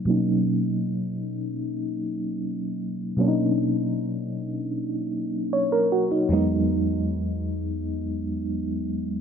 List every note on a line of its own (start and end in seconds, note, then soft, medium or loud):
0.05 3.14 B2 medium
0.05 3.14 F#3 medium
0.05 3.15 A#3 medium
0.05 3.15 C#4 medium
0.10 3.16 D#4 medium
3.17 6.25 B2 medium
3.17 6.26 F#3 medium
3.17 6.26 A#3 medium
3.17 6.27 C#4 medium
3.21 3.26 D4 medium
3.28 5.53 D#4 medium
5.53 5.71 C#5 medium
5.72 5.90 A#4 medium
5.92 6.10 F#4 medium
6.11 6.32 D#4 medium
6.29 9.21 E2 medium
6.29 9.21 F#3 medium
6.29 9.21 G#3 medium
6.29 9.21 B3 medium
6.33 9.21 D#4 medium